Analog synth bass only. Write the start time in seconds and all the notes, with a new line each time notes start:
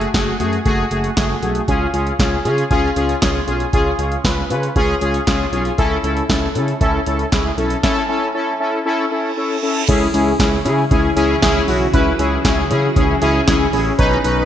0.14 F#1
0.40 F#2
0.66 F#1
0.91 F#1
1.17 F#1
1.42 B1
1.68 C#2
1.94 C#2
2.19 C#2
2.45 C#3
2.71 C#2
2.96 C#2
3.22 C#2
3.47 B1
3.73 C#2
3.99 C#2
4.24 C#2
4.50 C#3
4.76 C#2
5.01 C#2
5.27 C#2
5.52 B1
5.78 C#2
6.04 C#2
6.29 C#2
6.55 C#3
6.81 C#2
7.06 C#2
7.32 C#2
7.58 B1
9.89 C#2
10.14 C#2
10.39 C#2
10.65 C#3
10.91 C#2
11.17 C#2
11.43 C#2
11.68 B1
11.93 C#2
12.19 C#2
12.45 C#2
12.70 C#3
12.96 C#2
13.22 C#2
13.48 C#2
13.73 A1
13.99 B1
14.24 B1